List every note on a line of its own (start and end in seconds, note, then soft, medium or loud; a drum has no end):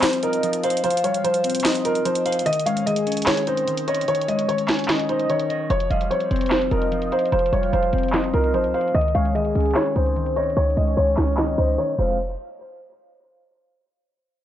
0.00 0.42 F3 medium
0.00 0.43 G3 medium
0.00 0.84 C4 loud
0.00 0.19 C5 loud
0.00 0.19 C5 medium
0.00 snare loud
0.00 clap medium
0.00 closed hi-hat medium
0.13 closed hi-hat medium
0.23 1.24 F4 medium
0.23 0.61 A#4 medium
0.23 0.80 D#5 loud
0.23 closed hi-hat medium
0.33 closed hi-hat soft
0.43 0.82 F3 medium
0.43 closed hi-hat medium
0.53 closed hi-hat medium
0.63 0.80 C5 medium
0.63 1.65 F5 medium
0.63 closed hi-hat medium
0.70 closed hi-hat medium
0.77 closed hi-hat medium
0.84 1.23 F3 medium
0.84 1.00 C5 loud
0.84 1.61 F5 loud
0.84 closed hi-hat medium
0.90 closed hi-hat medium
0.97 closed hi-hat medium
1.04 2.05 G3 medium
1.04 1.21 C#5 medium
1.04 closed hi-hat medium
1.14 closed hi-hat medium
1.24 1.64 F3 medium
1.24 1.81 C5 medium
1.24 closed hi-hat medium
1.34 closed hi-hat medium
1.44 2.46 C4 medium
1.44 closed hi-hat soft
1.44 open hi-hat medium
1.50 closed hi-hat medium
1.55 closed hi-hat medium
1.60 closed hi-hat medium
1.64 2.04 F3 medium
1.64 2.42 D#5 medium
1.64 snare loud
1.64 clap medium
1.64 closed hi-hat medium
1.75 closed hi-hat medium
1.85 2.46 F4 medium
1.85 2.02 A#4 medium
1.85 closed hi-hat medium
1.95 closed hi-hat soft
2.05 2.45 F3 medium
2.05 2.22 C5 medium
2.05 closed hi-hat medium
2.15 closed hi-hat medium
2.25 2.42 C5 medium
2.25 2.46 F5 medium
2.25 closed hi-hat medium
2.32 closed hi-hat medium
2.39 closed hi-hat medium
2.46 2.85 D#3 medium
2.46 2.62 D#5 loud
2.46 closed hi-hat medium
2.53 closed hi-hat medium
2.59 closed hi-hat medium
2.66 3.68 G#3 medium
2.66 2.85 C#5 medium
2.66 2.82 F5 medium
2.66 closed hi-hat medium
2.77 closed hi-hat medium
2.86 3.26 D#3 medium
2.86 3.44 G#4 loud
2.86 3.24 D#5 medium
2.86 closed hi-hat medium
2.96 closed hi-hat medium
3.07 4.08 C#4 medium
3.07 closed hi-hat soft
3.12 closed hi-hat medium
3.17 closed hi-hat medium
3.22 closed hi-hat medium
3.26 3.66 D#3 medium
3.26 3.43 C#5 medium
3.26 snare loud
3.26 clap medium
3.37 closed hi-hat medium
3.47 4.49 D#4 medium
3.47 4.04 C5 medium
3.47 3.85 C5 medium
3.47 closed hi-hat medium
3.57 closed hi-hat soft
3.67 4.07 D#3 medium
3.67 closed hi-hat medium
3.77 closed hi-hat medium
3.88 4.04 C#5 medium
3.88 4.89 D#5 medium
3.88 closed hi-hat medium
3.94 closed hi-hat medium
4.01 closed hi-hat medium
4.08 4.47 D#3 medium
4.08 4.85 C#5 loud
4.08 4.25 C#5 loud
4.08 closed hi-hat medium
4.15 closed hi-hat medium
4.21 closed hi-hat medium
4.28 5.30 G#3 medium
4.28 4.45 D#5 medium
4.28 closed hi-hat medium
4.39 closed hi-hat medium
4.48 4.88 D#3 medium
4.48 5.06 C#5 medium
4.48 closed hi-hat medium
4.58 closed hi-hat medium
4.68 5.70 C#4 loud
4.68 snare loud
4.68 clap medium
4.68 closed hi-hat medium
4.68 open hi-hat medium
4.74 closed hi-hat medium
4.79 closed hi-hat medium
4.84 closed hi-hat medium
4.88 5.28 D#3 medium
4.88 5.66 D#5 loud
4.88 snare loud
4.88 clap medium
4.88 closed hi-hat medium
4.99 closed hi-hat medium
5.09 5.70 D#4 medium
5.09 5.26 C5 medium
5.09 closed hi-hat medium
5.19 closed hi-hat soft
5.29 5.70 D#3 medium
5.29 5.68 C#5 medium
5.29 closed hi-hat medium
5.40 closed hi-hat medium
5.50 5.70 D#5 medium
5.50 closed hi-hat medium
5.70 5.90 F1 loud
5.70 6.09 F3 medium
5.70 5.87 C#5 loud
5.70 closed hi-hat medium
5.80 closed hi-hat medium
5.90 6.10 F1 loud
5.90 6.92 G3 medium
5.90 6.07 D#5 medium
5.90 6.10 F5 medium
5.90 closed hi-hat medium
6.01 closed hi-hat medium
6.11 6.50 F3 medium
6.11 6.68 C5 loud
6.11 6.49 C#5 medium
6.11 closed hi-hat medium
6.20 closed hi-hat medium
6.31 6.70 F1 loud
6.31 7.32 C4 loud
6.31 closed hi-hat soft
6.36 closed hi-hat medium
6.41 closed hi-hat medium
6.46 closed hi-hat medium
6.50 6.90 F3 medium
6.50 6.68 C5 medium
6.50 snare loud
6.50 clap medium
6.50 closed hi-hat medium
6.62 closed hi-hat medium
6.71 7.10 F1 loud
6.71 7.73 F4 medium
6.71 7.10 A#4 medium
6.71 7.29 D#5 loud
6.71 closed hi-hat medium
6.82 closed hi-hat soft
6.92 7.31 F3 loud
6.92 closed hi-hat medium
7.02 closed hi-hat medium
7.12 7.29 C5 medium
7.12 8.13 F5 medium
7.12 closed hi-hat medium
7.19 closed hi-hat medium
7.25 closed hi-hat medium
7.32 7.52 F1 loud
7.32 7.72 F3 medium
7.32 7.49 C5 loud
7.32 8.10 F5 loud
7.32 closed hi-hat medium
7.39 closed hi-hat medium
7.46 closed hi-hat medium
7.53 7.72 F1 loud
7.53 8.54 G3 medium
7.53 7.69 C#5 medium
7.53 closed hi-hat medium
7.63 closed hi-hat medium
7.73 7.92 F1 loud
7.73 8.12 F3 medium
7.73 8.30 C5 medium
7.73 closed hi-hat medium
7.83 closed hi-hat medium
7.93 8.32 F1 loud
7.93 8.94 C4 loud
7.93 closed hi-hat soft
7.93 open hi-hat medium
7.98 closed hi-hat medium
8.03 closed hi-hat medium
8.08 closed hi-hat medium
8.13 8.52 F3 medium
8.13 8.91 D#5 medium
8.13 snare loud
8.13 clap medium
8.13 closed hi-hat medium
8.24 closed hi-hat medium
8.33 8.55 C2 loud
8.33 8.94 F4 medium
8.33 8.50 A#4 medium
8.33 closed hi-hat medium
8.44 closed hi-hat soft
8.54 8.66 G#1 loud
8.54 8.94 F3 medium
8.54 8.71 C5 medium
8.54 closed hi-hat medium
8.64 8.74 C2 loud
8.64 closed hi-hat medium
8.74 8.91 C5 medium
8.74 8.94 F5 medium
8.74 closed hi-hat medium
8.81 closed hi-hat medium
8.88 closed hi-hat medium
8.94 9.14 C#2 loud
8.94 9.34 D#3 medium
8.94 9.11 D#5 loud
8.94 closed hi-hat medium
9.01 closed hi-hat medium
9.08 closed hi-hat medium
9.15 9.54 C#2 loud
9.15 10.16 G#3 medium
9.15 9.34 C#5 medium
9.15 9.31 F5 medium
9.15 closed hi-hat medium
9.25 closed hi-hat medium
9.35 9.74 D#3 medium
9.35 9.92 G#4 loud
9.35 9.73 D#5 medium
9.35 closed hi-hat medium
9.45 closed hi-hat medium
9.55 9.75 C#2 loud
9.55 10.57 C#4 medium
9.55 closed hi-hat soft
9.60 closed hi-hat medium
9.66 closed hi-hat medium
9.71 closed hi-hat medium
9.75 10.15 D#3 medium
9.75 9.92 C#5 medium
9.75 snare loud
9.75 clap medium
9.75 closed hi-hat medium
9.86 closed hi-hat medium
9.96 10.54 C#2 loud
9.96 10.97 D#4 medium
9.96 10.34 C5 medium
9.96 10.53 C5 medium
9.96 closed hi-hat medium
10.06 closed hi-hat soft
10.16 10.55 D#3 medium
10.16 closed hi-hat medium
10.26 closed hi-hat medium
10.36 10.53 C#5 medium
10.36 11.38 D#5 medium
10.36 closed hi-hat medium
10.43 closed hi-hat medium
10.50 closed hi-hat medium
10.56 10.76 C#2 loud
10.56 10.96 D#3 medium
10.56 11.34 C#5 loud
10.56 10.73 C#5 loud
10.56 closed hi-hat medium
10.63 closed hi-hat medium
10.70 closed hi-hat medium
10.77 10.96 C#2 loud
10.77 11.78 G#3 medium
10.77 10.93 D#5 medium
10.77 closed hi-hat medium
10.87 closed hi-hat medium
10.97 11.17 C#2 loud
10.97 11.37 D#3 medium
10.97 11.54 C#5 medium
10.97 closed hi-hat medium
11.07 closed hi-hat medium
11.17 11.56 C#2 loud
11.17 11.98 C#4 loud
11.17 snare loud
11.17 clap medium
11.17 closed hi-hat medium
11.17 open hi-hat medium
11.23 closed hi-hat medium
11.28 closed hi-hat medium
11.33 closed hi-hat medium
11.37 11.77 D#3 medium
11.37 11.95 D#5 loud
11.37 snare loud
11.37 clap medium
11.37 closed hi-hat medium
11.48 closed hi-hat medium
11.58 11.77 C#2 loud
11.58 11.99 D#4 medium
11.58 11.74 C5 medium
11.58 closed hi-hat medium
11.68 closed hi-hat soft
11.78 11.98 D#3 medium
11.78 11.97 C#5 medium
11.98 12.36 F1 loud
11.98 12.17 F3 medium
11.98 12.17 G#3 medium
11.98 12.17 C4 medium
11.98 12.17 F4 medium
11.98 12.17 C5 medium
11.98 12.17 F5 medium
11.98 crash medium